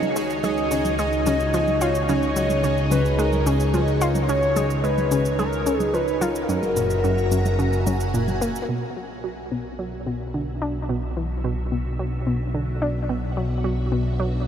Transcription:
0.00 6.46 C#2 medium
0.00 6.49 D#4 medium
0.00 8.70 F#4 medium
0.00 7.37 G#4 medium
0.00 6.49 C#5 medium
0.00 8.70 G#5 medium
0.00 high conga soft
0.00 cabasa soft
0.16 0.26 G#3 medium
0.16 cabasa medium
0.30 cabasa medium
0.43 0.69 G#3 medium
0.43 0.95 D#5 loud
0.43 high conga soft
0.43 cabasa medium
0.58 cabasa soft
0.71 0.88 C#3 medium
0.71 cabasa medium
0.85 high conga soft
0.85 cabasa medium
0.98 1.16 G#3 medium
0.98 1.83 D#5 loud
0.98 cabasa medium
1.12 cabasa soft
1.26 1.37 C#3 medium
1.26 high conga soft
1.26 cabasa medium
1.40 cabasa medium
1.54 1.71 F3 medium
1.54 cabasa medium
1.67 high conga soft
1.67 cabasa soft
1.81 2.07 F4 medium
1.81 2.91 C#5 loud
1.81 cabasa medium
1.95 cabasa medium
2.09 2.35 C#3 medium
2.09 high conga soft
2.09 cabasa soft
2.23 cabasa soft
2.36 2.53 F#3 medium
2.36 cabasa medium
2.50 high conga soft
2.50 cabasa medium
2.64 2.74 C#3 loud
2.64 cabasa medium
2.77 cabasa soft
2.91 3.02 C#3 medium
2.91 3.20 B4 medium
2.91 high conga soft
2.91 cabasa medium
3.05 cabasa soft
3.19 3.36 G#3 medium
3.19 3.48 A#4 loud
3.19 cabasa medium
3.33 high conga soft
3.33 cabasa soft
3.46 3.57 C#3 medium
3.46 4.01 G#4 medium
3.46 cabasa medium
3.60 cabasa medium
3.74 3.91 F3 medium
3.74 high conga soft
3.74 cabasa soft
3.88 cabasa soft
4.01 4.27 F4 medium
4.01 cabasa medium
4.15 high conga soft
4.15 cabasa medium
4.29 4.46 C#3 medium
4.29 4.86 C#5 loud
4.29 cabasa medium
4.43 cabasa soft
4.56 4.67 G#3 medium
4.56 high conga soft
4.56 cabasa medium
4.70 cabasa soft
4.84 5.10 G#3 medium
4.84 5.39 B4 loud
4.84 cabasa soft
4.98 high conga soft
4.98 cabasa soft
5.11 5.29 C#3 medium
5.11 cabasa medium
5.25 cabasa soft
5.39 5.56 G#3 medium
5.39 5.79 A#4 loud
5.39 high conga soft
5.39 cabasa soft
5.53 cabasa soft
5.66 5.77 C#3 medium
5.66 cabasa medium
5.79 5.96 G#4 loud
5.79 high conga soft
5.79 cabasa soft
5.94 6.11 F3 medium
5.94 6.23 B4 loud
5.94 cabasa soft
6.08 cabasa soft
6.21 6.47 F4 medium
6.21 8.14 A#4 loud
6.21 high conga soft
6.21 cabasa medium
6.35 cabasa medium
6.49 8.66 F#1 medium
6.49 6.75 F#2 medium
6.49 14.47 F#4 medium
6.49 cabasa medium
6.63 high conga soft
6.63 cabasa soft
6.73 6.94 A#2 medium
6.73 14.47 E5 medium
6.73 8.69 A#5 medium
6.73 cabasa medium
6.90 cabasa medium
7.04 7.14 F#2 loud
7.04 10.25 G#5 medium
7.04 high conga soft
7.04 cabasa medium
7.18 cabasa soft
7.31 7.42 F#2 medium
7.31 cabasa medium
7.45 high conga soft
7.45 cabasa soft
7.59 7.76 C#3 medium
7.59 cabasa medium
7.73 cabasa soft
7.86 7.97 F#2 medium
7.86 high conga soft
7.86 cabasa medium
8.00 cabasa medium
8.14 8.31 A#2 medium
8.14 cabasa medium
8.28 high conga soft
8.28 cabasa soft
8.41 8.67 A#3 medium
8.41 cabasa medium
8.56 cabasa soft
8.69 14.47 B1 medium
8.69 8.86 B2 medium
8.69 14.47 B3 medium
8.96 9.07 F#3 medium
9.24 9.50 F#3 medium
9.52 9.69 B2 medium
9.77 9.96 F#3 medium
9.77 14.47 D4 medium
10.06 10.17 B2 medium
10.34 10.51 D3 medium
10.62 10.88 D4 medium
10.89 11.15 B2 medium
11.17 11.34 E3 medium
11.44 11.55 B2 medium
11.72 11.82 B2 medium
11.99 12.17 F#3 medium
12.27 12.37 B2 medium
12.54 12.72 D3 medium
12.82 13.08 D4 medium
13.09 13.27 B2 medium
13.37 13.47 F#3 medium
13.64 13.90 F#3 medium
13.92 14.09 B2 medium
14.20 14.37 F#3 medium

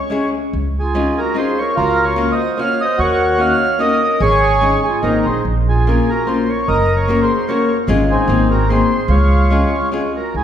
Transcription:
0.00 0.30 C#5 medium
0.10 0.34 G#3 medium
0.10 0.34 C#4 medium
0.10 0.34 E4 medium
0.10 0.35 G#4 medium
0.53 1.07 C#2 medium
0.79 1.16 F4 medium
0.79 1.20 G#4 medium
0.95 1.17 G#3 medium
0.95 1.17 C#4 medium
0.95 1.18 D#4 soft
0.95 1.18 F4 medium
1.18 1.36 F#4 medium
1.18 1.37 A#4 medium
1.34 1.58 G#3 soft
1.34 1.58 C#4 soft
1.34 1.58 D#4 medium
1.34 1.58 F4 medium
1.34 1.58 G#4 medium
1.34 1.60 C5 medium
1.59 1.76 A#4 medium
1.59 1.75 C#5 medium
1.76 2.30 C#2 medium
1.76 2.35 F4 medium
1.76 2.03 F#4 medium
1.76 2.05 A#4 loud
2.04 2.30 A#4 medium
2.04 2.32 C#5 medium
2.16 2.39 A#3 medium
2.16 2.39 C#4 medium
2.16 2.40 F4 medium
2.16 2.40 F#4 medium
2.32 2.58 C5 medium
2.32 2.59 D#5 medium
2.58 2.80 A#3 medium
2.58 2.80 C#4 medium
2.58 2.80 F4 soft
2.58 2.81 F#4 medium
2.58 2.81 F5 loud
2.62 2.80 C#5 medium
2.81 2.99 C5 medium
2.81 2.99 D#5 medium
2.98 3.51 D#2 medium
2.98 3.57 F#4 medium
2.98 3.40 C#5 loud
3.02 3.38 A#4 medium
3.38 3.60 A#3 medium
3.38 3.60 C#4 medium
3.38 3.61 D#4 medium
3.38 3.61 F#4 medium
3.38 3.81 F5 loud
3.42 3.78 C#5 medium
3.79 4.01 A#3 medium
3.79 4.02 C#4 medium
3.79 4.02 D#4 soft
3.79 4.02 F#4 medium
3.79 4.18 A#4 medium
3.79 4.22 D#5 loud
4.20 4.74 G#1 loud
4.20 4.80 G#4 medium
4.20 4.81 G#4 medium
4.20 4.86 C#5 loud
4.61 4.84 G#3 medium
4.61 4.84 C#4 medium
4.61 4.84 D#4 medium
4.61 4.85 G#4 medium
4.84 5.03 F4 medium
4.84 5.03 G#4 medium
5.02 5.23 G#1 medium
5.02 5.25 A#3 medium
5.02 5.25 C4 soft
5.02 5.41 D#4 medium
5.02 5.24 D#4 medium
5.02 5.26 D#4 soft
5.02 5.26 G#4 medium
5.02 5.26 A#4 medium
5.26 5.42 A#1 medium
5.26 5.44 G#4 medium
5.26 5.43 C5 medium
5.45 5.98 A#1 medium
5.69 6.07 F4 medium
5.69 6.10 G#4 medium
5.87 6.09 A#3 medium
5.87 6.09 C#4 soft
5.87 6.10 F4 medium
5.87 6.10 A#4 medium
6.09 6.27 F#4 medium
6.09 6.28 A#4 medium
6.27 6.49 A#3 medium
6.27 6.50 C#4 soft
6.27 6.50 F4 soft
6.27 6.49 F4 medium
6.27 6.50 A#4 soft
6.27 6.50 C5 medium
6.49 6.66 A#4 medium
6.49 6.68 C#5 medium
6.68 7.20 F#1 medium
6.68 6.92 A#4 medium
6.68 7.26 A#4 medium
6.68 6.95 D#5 loud
6.95 7.19 A#4 medium
6.95 7.20 C#5 medium
7.08 7.30 A#3 medium
7.08 7.30 C#4 medium
7.08 7.30 F#4 medium
7.08 7.31 A#4 medium
7.22 7.47 G#4 medium
7.22 7.49 C5 medium
7.47 7.70 A#3 medium
7.47 7.71 C#4 medium
7.47 7.71 F#4 medium
7.47 7.76 A#4 medium
7.47 7.71 A#4 medium
7.47 7.77 C#5 medium
7.88 8.14 G#1 medium
7.88 8.21 G#3 medium
7.88 8.21 C#4 medium
7.88 8.22 F4 medium
7.88 8.22 G#4 medium
8.10 8.65 C4 medium
8.10 8.48 D#4 medium
8.10 8.48 G#4 medium
8.27 8.81 G#1 medium
8.27 8.50 A#3 medium
8.27 8.51 C4 medium
8.27 8.51 D#4 medium
8.27 8.51 G#4 medium
8.50 8.67 F#4 medium
8.50 8.69 A#4 medium
8.68 8.92 A#3 medium
8.68 8.92 C4 medium
8.68 8.92 D#4 soft
8.68 9.06 G#4 medium
8.68 9.11 C5 medium
8.72 8.93 G#4 medium
9.08 9.63 C#2 loud
9.08 9.89 F4 medium
9.08 9.89 G#4 medium
9.08 9.89 C#5 medium
9.50 9.73 G#3 medium
9.50 9.74 C#4 medium
9.50 9.74 F4 medium
9.50 9.75 G#4 medium
9.92 10.15 G#3 medium
9.92 10.15 C#4 medium
9.92 10.16 F4 medium
9.92 10.16 G#4 medium
10.16 10.33 F#4 medium
10.16 10.35 A#4 medium
10.34 10.44 C#2 medium
10.34 10.44 E4 medium
10.34 10.44 G#4 medium

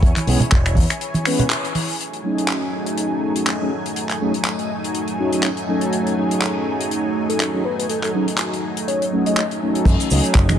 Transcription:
0.00 0.11 E2 loud
0.00 1.95 E4 medium
0.00 1.95 C#5 medium
0.00 1.95 G#5 medium
0.00 kick loud
0.00 closed hi-hat medium
0.16 clap soft
0.16 closed hi-hat medium
0.16 high conga medium
0.26 0.35 B1 medium
0.26 0.38 E3 medium
0.26 0.39 G#3 medium
0.26 0.39 B3 medium
0.26 0.39 C#4 medium
0.26 0.39 G#4 loud
0.26 open hi-hat loud
0.40 closed hi-hat medium
0.40 low conga medium
0.51 0.78 E1 medium
0.51 kick loud
0.51 clap loud
0.51 closed hi-hat medium
0.66 finger snap medium
0.66 closed hi-hat soft
0.75 0.84 E2 medium
0.75 kick medium
0.75 open hi-hat loud
0.75 high conga medium
0.90 finger snap medium
0.90 closed hi-hat medium
1.01 closed hi-hat medium
1.14 closed hi-hat medium
1.14 high conga medium
1.25 1.43 E3 medium
1.25 1.43 G#3 medium
1.25 1.43 B3 medium
1.25 1.43 C#4 medium
1.25 1.44 B4 medium
1.25 finger snap medium
1.25 open hi-hat loud
1.39 closed hi-hat medium
1.39 low conga medium
1.50 clap loud
1.50 closed hi-hat medium
1.65 closed hi-hat soft
1.75 open hi-hat loud
1.75 high conga medium
1.88 open hi-hat medium
2.00 9.82 F#3 medium
2.00 9.82 A3 medium
2.00 9.82 D#4 medium
2.00 9.82 G#5 medium
2.00 closed hi-hat medium
2.13 closed hi-hat soft
2.23 3.57 F#3 medium
2.23 3.57 A3 medium
2.23 3.57 C#4 medium
2.23 3.58 D#4 medium
2.23 3.58 G#4 medium
2.38 closed hi-hat medium
2.48 clap loud
2.48 closed hi-hat medium
2.86 closed hi-hat medium
2.98 closed hi-hat medium
3.36 closed hi-hat medium
3.47 clap loud
3.47 closed hi-hat medium
3.60 3.70 F#3 medium
3.60 3.70 A3 medium
3.60 3.70 C#4 medium
3.60 3.70 D#4 medium
3.60 3.70 G#4 medium
3.86 closed hi-hat medium
3.96 closed hi-hat medium
4.09 clap soft
4.09 closed hi-hat soft
4.20 4.32 F#3 medium
4.20 4.32 A3 medium
4.20 4.32 C#4 medium
4.20 4.33 D#4 medium
4.20 4.33 G#4 loud
4.34 closed hi-hat medium
4.45 clap loud
4.45 closed hi-hat medium
4.59 closed hi-hat soft
4.84 closed hi-hat medium
4.95 closed hi-hat medium
5.08 closed hi-hat soft
5.18 5.30 F#3 medium
5.18 5.30 A3 medium
5.18 5.31 C#4 medium
5.18 5.31 D#4 medium
5.18 5.31 F#4 loud
5.32 5.48 F#3 medium
5.32 5.48 A3 medium
5.32 5.48 C#4 medium
5.32 5.48 D#4 medium
5.32 5.49 G#4 medium
5.32 closed hi-hat medium
5.43 clap loud
5.43 closed hi-hat medium
5.57 closed hi-hat soft
5.68 6.14 F#3 medium
5.68 6.15 A3 medium
5.68 6.15 C#4 medium
5.68 6.15 D#4 medium
5.68 6.15 A4 medium
5.81 closed hi-hat medium
5.93 closed hi-hat medium
6.07 closed hi-hat soft
6.16 7.50 F#3 medium
6.16 7.50 A3 medium
6.16 7.51 C#4 medium
6.16 7.51 D#4 medium
6.16 7.51 G#4 medium
6.31 closed hi-hat medium
6.41 clap loud
6.41 closed hi-hat medium
6.81 closed hi-hat medium
6.91 closed hi-hat medium
7.29 7.44 A4 medium
7.29 closed hi-hat medium
7.40 clap loud
7.40 closed hi-hat medium
7.53 7.63 F#3 medium
7.53 7.63 A3 medium
7.53 7.63 C#4 medium
7.53 7.63 D#4 medium
7.53 7.63 G#4 medium
7.65 7.74 B4 medium
7.78 7.85 B4 medium
7.78 closed hi-hat medium
7.89 7.98 A4 medium
7.89 closed hi-hat medium
8.03 8.10 A4 medium
8.03 clap soft
8.03 closed hi-hat soft
8.14 8.26 F#3 medium
8.14 8.26 A3 medium
8.14 8.26 C#4 medium
8.14 8.26 D#4 medium
8.14 8.26 G#4 loud
8.28 closed hi-hat medium
8.38 clap loud
8.38 closed hi-hat medium
8.53 closed hi-hat soft
8.77 closed hi-hat medium
8.88 9.04 C#5 medium
8.88 closed hi-hat medium
9.02 closed hi-hat medium
9.12 9.24 F#3 medium
9.12 9.24 A3 medium
9.12 9.24 C#4 medium
9.12 9.24 D#4 medium
9.12 9.24 F#4 loud
9.26 9.42 F#3 medium
9.26 9.42 A3 medium
9.26 9.42 C#4 medium
9.26 9.42 D#4 medium
9.26 9.42 G#4 loud
9.26 9.33 D#5 medium
9.26 closed hi-hat medium
9.37 9.46 D#5 medium
9.37 clap loud
9.37 closed hi-hat medium
9.51 closed hi-hat soft
9.61 10.08 F#3 medium
9.61 10.08 A3 medium
9.61 10.08 C#4 medium
9.61 10.08 D#4 medium
9.61 10.09 A4 medium
9.75 closed hi-hat medium
9.85 9.94 F#2 loud
9.85 10.59 F#4 medium
9.85 10.59 D#5 medium
9.85 10.59 G#5 medium
9.85 kick loud
9.85 closed hi-hat medium
9.85 crash loud
9.85 high conga medium
9.85 shaker medium
10.00 closed hi-hat medium
10.00 shaker medium
10.10 10.19 C#2 medium
10.10 10.59 F#3 medium
10.10 10.59 A3 medium
10.10 10.59 C#4 medium
10.10 10.59 D#4 medium
10.10 10.59 G#4 medium
10.10 open hi-hat loud
10.10 shaker medium
10.24 closed hi-hat medium
10.24 shaker medium
10.35 10.59 F#1 medium
10.35 kick loud
10.35 clap loud
10.35 closed hi-hat medium
10.35 shaker medium
10.49 finger snap medium
10.49 closed hi-hat medium
10.49 high conga medium
10.49 shaker soft

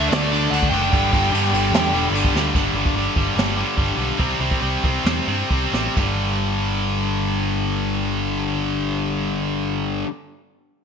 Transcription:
0.00 0.11 D3 loud
0.00 0.12 A3 medium
0.00 0.12 D4 loud
0.00 2.51 D4 medium
0.00 2.51 A4 medium
0.00 0.92 E5 medium
0.09 0.47 D2 medium
0.09 0.31 D3 loud
0.09 0.31 A3 medium
0.09 0.32 D4 loud
0.09 0.52 D5 medium
0.09 snare loud
0.09 crash medium
0.32 0.52 D3 medium
0.32 0.52 A3 loud
0.32 0.53 D4 loud
0.32 crash medium
0.50 0.69 D2 medium
0.50 0.72 D3 loud
0.50 0.71 A3 medium
0.50 0.73 D4 loud
0.50 0.69 F#5 medium
0.50 crash loud
0.63 kick medium
0.70 0.89 F#1 medium
0.70 0.91 D3 medium
0.70 0.92 A3 medium
0.70 4.19 D4 loud
0.70 2.08 G5 loud
0.70 crash medium
0.92 1.10 G1 loud
0.92 1.11 G2 loud
0.92 1.11 D3 loud
0.92 2.52 G3 medium
0.92 1.11 G3 loud
0.92 kick loud
0.92 crash medium
1.12 1.30 G1 loud
1.12 1.32 G2 medium
1.12 1.32 D3 medium
1.12 1.32 G3 loud
1.12 kick loud
1.12 crash medium
1.31 1.49 G2 loud
1.31 1.53 G2 loud
1.31 1.53 D3 loud
1.31 1.54 G3 loud
1.31 crash medium
1.51 1.70 G1 medium
1.51 1.73 G2 medium
1.51 1.73 D3 loud
1.51 1.73 G3 medium
1.51 crash medium
1.71 1.89 E2 loud
1.71 1.94 G2 loud
1.71 1.94 D3 loud
1.71 1.94 G3 loud
1.71 crash loud
1.75 snare loud
1.91 2.09 E1 medium
1.91 2.13 G2 medium
1.91 crash medium
1.95 2.14 D3 medium
1.95 2.13 G3 medium
2.10 2.29 G1 medium
2.14 2.35 G2 medium
2.14 2.36 D3 loud
2.14 2.35 G3 loud
2.14 crash medium
2.25 kick medium
2.33 2.50 D2 medium
2.33 2.54 G2 medium
2.33 2.54 D3 medium
2.33 2.54 G3 medium
2.33 snare medium
2.55 2.67 G1 medium
2.55 2.74 G2 medium
2.55 2.75 D3 loud
2.55 2.76 G3 loud
2.55 kick loud
2.55 crash medium
2.73 2.86 G1 medium
2.73 2.95 G2 medium
2.73 2.95 D3 medium
2.73 open hi-hat soft
2.77 2.96 G3 loud
2.85 kick medium
2.94 3.07 G1 medium
2.94 3.16 G2 medium
2.94 3.16 D3 medium
2.94 3.18 G3 medium
2.94 open hi-hat medium
3.16 3.29 G1 medium
3.16 3.34 G2 medium
3.16 3.35 D3 medium
3.16 3.35 G3 loud
3.16 kick medium
3.36 3.61 G1 medium
3.36 3.56 G2 medium
3.36 3.56 D3 loud
3.36 3.57 G3 medium
3.36 snare loud
3.36 open hi-hat medium
3.57 3.76 G2 medium
3.57 3.76 D3 medium
3.57 3.77 G3 medium
3.57 open hi-hat soft
3.77 3.90 G1 medium
3.77 3.96 G2 medium
3.77 3.97 D3 medium
3.77 3.98 G3 medium
3.77 kick medium
3.77 open hi-hat medium
3.97 4.10 B1 medium
3.97 4.17 G2 medium
3.97 4.17 D3 medium
3.97 4.19 G3 medium
3.97 open hi-hat soft
4.19 4.32 C2 loud
4.19 4.40 C3 loud
4.19 4.41 G3 medium
4.19 4.41 C4 loud
4.19 kick loud
4.19 open hi-hat medium
4.40 4.53 C2 medium
4.40 4.59 C3 medium
4.40 4.61 G3 medium
4.40 4.61 C4 medium
4.40 open hi-hat medium
4.51 kick medium
4.61 4.76 C2 medium
4.61 4.83 C3 medium
4.61 4.84 G3 medium
4.61 4.84 C4 medium
4.61 open hi-hat medium
4.84 4.97 C2 medium
4.84 5.05 C3 medium
4.84 5.05 G3 loud
4.84 5.06 C4 loud
4.84 kick medium
4.84 open hi-hat medium
5.05 5.19 E2 medium
5.05 5.28 C3 medium
5.05 5.27 G3 medium
5.05 5.28 C4 loud
5.05 snare loud
5.05 open hi-hat medium
5.27 5.42 G2 medium
5.27 5.50 C3 medium
5.27 5.50 G3 medium
5.27 5.50 C4 medium
5.27 open hi-hat soft
5.51 5.65 C2 medium
5.51 5.73 C3 medium
5.51 5.74 G3 medium
5.51 5.74 C4 medium
5.51 kick medium
5.51 open hi-hat medium
5.72 5.87 A1 medium
5.72 5.95 C3 medium
5.72 5.96 G3 medium
5.72 5.96 C4 medium
5.72 snare medium
5.96 10.02 G1 medium
5.96 10.07 G2 medium
5.96 10.09 D3 loud
5.96 kick medium
5.96 crash medium
6.01 10.11 G3 medium

